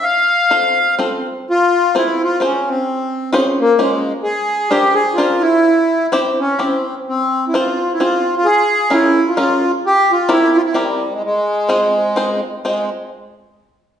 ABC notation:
X:1
M:3/4
L:1/16
Q:"Swing" 1/4=129
K:F
V:1 name="Five-string banjo"
z4 [CFAc]2 z2 [CFAc]2 z2 | [K:Fm] z4 [CFAc]2 z2 [CFAc]2 z2 | z4 [DFAc]2 z2 [DFAc]2 z2 | z4 [=DFBc]2 z2 [DFBc]2 z2 |
z4 [C=EGc]2 z2 [CEGc]2 z2 | z4 [CFAc]2 z2 [CFAc]2 z2 | z4 [DFAB]2 z2 [DFAB]2 z2 | z4 [C=EGB]2 z2 [CEGB]2 z2 |
z4 [CFAc]2 z2 [CFAc]2 z2 | [CFAc]2 z8 z2 |]
V:2 name="Accordion"
f8 z4 | [K:Fm] F4 =E2 F2 D2 C2- | C4 z2 B,2 A,3 z | A4 G2 A2 F2 =E2- |
=E4 z2 D2 C3 z | C3 =E F3 E F3 F | A4 =E3 F F3 z | G2 F2 =E2 F E G,3 A, |
A,8- A,2 z2 | A,2 z8 z2 |]